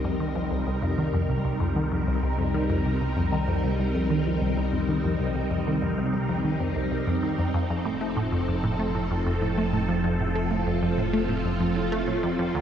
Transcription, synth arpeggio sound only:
0.04 0.14 F2 medium
0.20 0.30 D#3 medium
0.36 0.45 F2 medium
0.51 0.61 C2 medium
0.67 0.76 C2 medium
0.82 0.92 F2 medium
0.98 1.08 D#3 medium
1.14 1.23 F2 medium
1.29 1.39 C2 medium
1.45 1.54 C2 medium
1.60 1.70 F2 medium
1.76 1.86 D#3 medium
1.92 2.01 F2 medium
2.07 2.17 C2 medium
2.23 2.33 C2 medium
2.39 2.48 F2 medium
2.54 2.64 D#3 medium
2.70 2.79 F2 medium
2.86 2.95 C2 medium
3.01 3.11 C2 medium
3.17 3.26 F2 medium
3.32 3.42 D#3 medium
3.48 3.58 F2 medium
3.64 3.73 C2 medium
3.79 3.89 C2 medium
3.95 4.04 F2 medium
4.10 4.20 D#3 medium
4.26 4.36 F2 medium
4.42 4.51 C2 medium
4.57 4.67 C2 medium
4.73 4.82 F2 medium
4.89 4.98 D#3 medium
5.04 5.14 F2 medium
5.20 5.29 C2 medium
5.36 5.45 C2 medium
5.51 5.61 F2 medium
5.67 5.76 D#3 medium
5.82 5.92 F2 medium
5.98 6.08 C2 medium
6.14 6.23 C2 medium
6.29 6.39 F2 medium
6.45 6.54 D#3 medium
6.60 6.70 F2 medium
6.76 6.86 C2 medium
6.91 7.01 C2 medium
7.07 7.17 F2 medium
7.23 7.32 D#3 medium
7.39 7.48 F2 medium
7.54 7.64 F2 medium
7.70 7.79 F2 medium
7.85 7.95 A2 medium
8.01 8.11 A3 medium
8.17 8.26 A2 medium
8.32 8.42 F2 medium
8.48 8.58 F2 medium
8.64 8.73 A2 medium
8.79 8.89 A3 medium
8.95 9.04 A2 medium
9.11 9.20 F2 medium
9.26 9.36 F2 medium
9.42 9.51 A2 medium
9.57 9.67 A3 medium
9.73 9.83 A2 medium
9.89 9.98 F2 medium
10.04 10.14 F2 medium
10.20 10.29 A2 medium
10.35 10.45 A3 medium
10.51 10.61 A2 medium
10.67 10.76 F2 medium
10.82 10.92 F2 medium
10.98 11.08 A2 medium
11.13 11.23 A3 medium
11.29 11.39 A2 medium
11.45 11.54 F2 medium
11.60 11.70 F2 medium
11.76 11.86 A2 medium
11.92 12.01 A3 medium
12.07 12.17 A2 medium
12.23 12.33 F2 medium
12.39 12.48 F2 medium
12.55 12.61 D2 medium

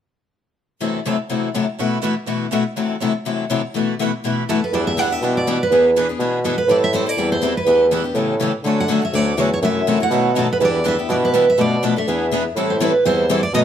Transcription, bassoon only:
4.73 5.12 E2 medium
5.22 5.61 B2 medium
5.70 6.10 E2 medium
6.19 6.59 B2 medium
6.68 7.07 A2 medium
7.17 7.57 E2 medium
7.66 8.05 E2 medium
8.15 8.54 A2 medium
8.64 9.03 D3 medium
9.13 9.34 D2 medium
9.38 9.59 E2 medium
9.62 10.01 F#2 medium
10.10 10.50 B2 medium
10.59 10.99 E2 medium
11.09 11.48 B2 medium
11.58 11.98 B2 medium
12.07 12.47 E2 medium
12.56 12.95 A2 medium
13.05 13.44 E2 medium
13.53 13.64 B2 medium

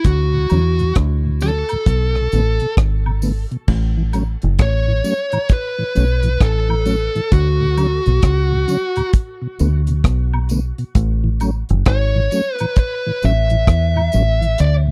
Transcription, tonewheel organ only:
0.34 0.39 D2 medium
0.34 0.39 A2 medium
0.51 0.60 D3 medium
0.51 0.60 F#3 medium
0.51 0.60 C#4 medium
0.80 0.85 D2 medium
0.80 0.85 A2 medium
1.25 1.30 D2 medium
1.25 1.30 A2 medium
1.42 1.51 D3 medium
1.42 1.51 F#3 medium
1.42 1.51 C#4 medium
1.72 1.76 D2 medium
1.72 1.76 A2 medium
2.16 2.21 B2 medium
2.33 2.42 D3 medium
2.33 2.42 A3 medium
2.33 2.42 B3 medium
2.62 2.67 B2 medium
3.06 3.12 B2 medium
3.22 3.32 D3 medium
3.22 3.32 A3 medium
3.22 3.32 B3 medium
3.51 3.57 B2 medium
3.97 4.03 A2 medium
3.97 4.03 E3 medium
4.14 4.23 F#3 medium
4.14 4.24 A3 medium
4.14 4.24 C#4 medium
4.43 4.48 A2 medium
4.43 4.48 E3 medium
4.88 4.93 A2 medium
4.88 4.93 E3 medium
5.04 5.14 F#3 medium
5.04 5.14 A3 medium
5.04 5.14 C#4 medium
5.33 5.38 A2 medium
5.33 5.39 E3 medium
5.79 5.84 A2 medium
5.79 5.84 E3 medium
5.95 6.05 F#3 medium
5.95 6.05 A3 medium
5.95 6.05 C#4 medium
6.23 6.29 A2 medium
6.23 6.29 E3 medium
6.69 6.75 A2 medium
6.69 6.75 E3 medium
6.86 6.95 F#3 medium
6.86 6.96 A3 medium
6.86 6.96 C#4 medium
7.15 7.21 A2 medium
7.15 7.21 E3 medium
7.60 7.66 D2 medium
7.60 7.66 A2 medium
7.77 7.87 D3 medium
7.77 7.87 F#3 medium
7.77 7.87 C#4 medium
8.06 8.11 D2 medium
8.06 8.12 A2 medium
8.52 8.57 D2 medium
8.52 8.57 A2 medium
8.68 8.77 D3 medium
8.68 8.77 F#3 medium
8.68 8.77 C#4 medium
8.97 9.02 D2 medium
8.97 9.02 A2 medium
9.42 9.47 B2 medium
9.60 9.69 D3 medium
9.60 9.69 A3 medium
9.60 9.69 B3 medium
9.89 9.94 B2 medium
10.34 10.39 B2 medium
10.51 10.60 D3 medium
10.51 10.60 A3 medium
10.51 10.60 B3 medium
10.79 10.84 B2 medium
11.24 11.29 A2 medium
11.24 11.29 E3 medium
11.41 11.50 F#3 medium
11.41 11.50 A3 medium
11.41 11.51 C#4 medium
11.70 11.75 A2 medium
11.70 11.75 E3 medium
12.15 12.21 A2 medium
12.15 12.21 E3 medium
12.32 12.41 F#3 medium
12.32 12.41 A3 medium
12.32 12.41 C#4 medium
12.61 12.66 A2 medium
12.61 12.66 E3 medium
13.07 13.12 A2 medium
13.07 13.12 E3 medium
13.23 13.32 F#3 medium
13.23 13.32 A3 medium
13.23 13.32 C#4 medium
13.51 13.57 A2 medium
13.51 13.56 E3 medium
13.96 14.02 A2 medium
13.96 14.02 E3 medium
14.14 14.23 F#3 medium
14.14 14.23 A3 medium
14.14 14.23 C#4 medium
14.41 14.47 A2 medium
14.41 14.47 E3 medium
14.87 14.91 D2 medium
14.87 14.91 A2 medium

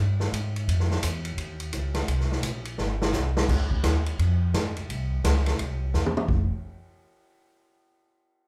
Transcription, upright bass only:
0.00 0.32 G2 loud
0.33 0.67 G#2 medium
0.68 1.02 F2 loud
1.03 1.37 E2 loud
1.37 1.72 D#2 medium
1.72 2.07 C#2 loud
2.08 2.42 C2 loud
2.43 2.77 A#1 loud
2.79 3.13 G1 loud
3.14 3.48 C2 medium
3.49 3.83 C#2 medium
3.84 4.18 D#2 medium
4.19 4.53 F2 loud
4.54 4.68 G2 medium
4.66 4.78 F2 medium
4.78 4.88 C#2 medium
4.89 5.23 C2 loud
5.24 5.58 C#2 medium
5.59 5.93 C2 loud
5.94 6.28 E2 medium
6.28 6.49 F1 loud

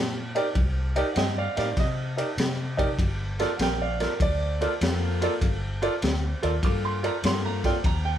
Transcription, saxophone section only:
4.60 4.72 A#3 medium
4.60 4.73 F4 medium
4.60 4.73 A4 medium
4.80 5.58 A#3 medium
4.80 5.58 F4 medium
4.80 5.58 A4 medium
6.63 7.08 A#3 medium
6.63 7.08 F4 medium
6.63 7.08 A4 medium
7.23 7.84 A#3 medium
7.23 7.84 F4 medium
7.23 7.85 A4 medium

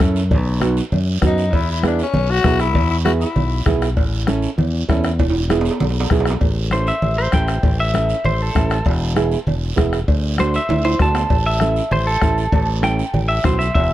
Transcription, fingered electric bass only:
0.00 0.32 F#2 loud
0.31 0.80 B1 loud
0.92 1.17 F#2 medium
1.22 1.53 F#2 medium
1.53 2.02 E2 loud
2.15 2.39 B1 medium
2.44 2.75 B1 loud
2.75 3.24 E2 loud
3.36 3.60 B1 medium
3.66 3.97 B1 medium
3.97 4.46 A1 loud
4.58 4.82 E2 medium
4.89 5.21 E2 loud
5.19 5.68 E1 loud
5.81 6.05 B1 medium
6.11 6.35 B1 loud
6.41 6.90 A1 loud
7.02 7.27 A1 medium
7.33 7.58 A1 medium
7.63 8.12 A1 loud
8.24 8.49 A1 medium
8.55 8.80 A1 medium
8.86 9.35 E1 loud
9.47 9.71 E1 medium
9.78 10.02 E1 medium
10.08 10.57 D2 loud
10.69 10.94 D2 medium
10.99 11.24 D2 medium
11.30 11.79 A1 loud
11.91 12.16 A1 medium
12.22 12.47 A1 medium
12.52 13.01 A1 loud
13.14 13.38 A1 medium
13.44 13.69 B1 medium
13.75 13.93 E1 loud

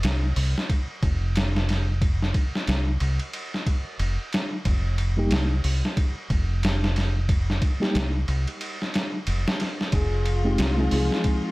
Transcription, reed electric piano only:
5.17 5.45 G3 medium
5.17 5.46 A#3 medium
5.17 5.46 D#4 medium
5.17 5.47 G4 medium
7.80 8.09 G3 medium
7.80 8.09 A#3 medium
7.80 8.10 D#4 medium
7.80 8.10 G4 medium
10.44 10.73 G#3 medium
10.44 10.73 C4 medium
10.44 10.74 D#4 medium
10.44 10.74 G4 medium
10.76 11.51 G#3 medium
10.76 11.51 C4 medium
10.76 11.51 D#4 medium
10.76 11.51 G#4 medium

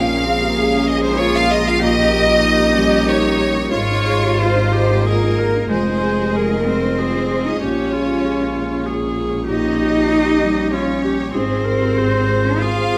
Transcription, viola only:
0.00 1.78 G#4 medium
1.81 3.69 G4 medium
3.73 4.29 F4 medium
4.40 4.74 F4 medium
4.72 5.08 G4 medium
5.06 5.40 G#4 medium
5.38 5.70 A#4 medium
5.70 6.37 C5 medium
6.36 7.00 A#4 medium
6.99 7.61 G#4 medium
7.62 7.93 G4 medium
7.92 8.88 F4 medium
8.86 9.48 G#4 medium
9.48 10.75 G4 medium
10.73 11.04 F4 medium
11.05 11.34 G4 medium
11.35 11.66 G#4 medium
11.64 11.99 A#4 medium
11.97 12.63 C5 medium
12.62 12.98 G#4 medium

